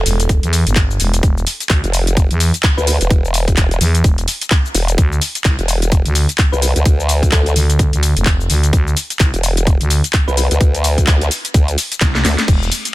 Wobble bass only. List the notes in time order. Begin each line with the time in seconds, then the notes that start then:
1.84 F1
2.77 D2
3.01 E1
3.11 E1
3.57 E1
4.75 E1
5.59 E1
6.52 C2
6.76 D2
6.85 D2
7.32 D2
9.34 E1
10.28 C2
10.51 D2
10.61 D2
11.07 D2
11.54 D2
12.25 D2